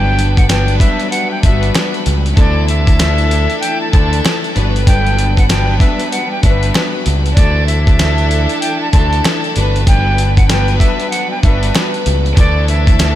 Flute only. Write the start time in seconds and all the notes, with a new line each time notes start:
Already playing: G5
0.38 F#5
0.50 G5
0.79 E5
1.11 F#5
1.31 G5
1.44 E5
2.38 D5
2.69 E5
3.60 G5
3.82 A5
3.92 A5
4.86 G5
5.38 F#5
5.49 G5
5.79 E5
6.11 F#5
6.31 G5
6.44 E5
7.35 D5
7.67 E5
8.60 G5
8.82 A5
8.92 A5
9.88 G5
10.37 F#5
10.49 G5
10.79 E5
11.10 F#5
11.31 G5
11.43 E5
12.39 D5
12.69 E5